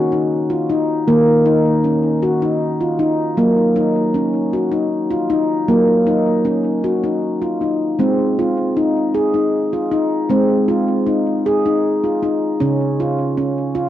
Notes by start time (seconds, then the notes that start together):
Already playing: D#3 F#4
0.12 D#4
0.50 F4
0.70 D#4
1.08 D#3 A#3
1.46 D#4
1.84 C#4
2.23 F#4
2.42 D#4
2.81 F4
2.99 D#4
3.37 F#3 A#3
3.76 D#4
4.14 C#4
4.53 F#4
4.72 D#4
5.11 F4
5.30 D#4
5.68 F#3 A#3
6.07 D#4
6.45 C#4
6.84 F#4
7.04 D#4
7.42 F4
7.61 D#4
7.99 G#3 C4
8.38 F4
8.77 D#4
9.14 G#4
9.34 D#4
9.73 F4
9.92 D#4
10.30 G#3 C4
10.68 F4
11.07 D#4
11.46 G#4
11.66 D#4
12.04 F4
12.23 D#4
12.60 C#3 C#4
13.00 F4
13.37 C#4
13.75 F4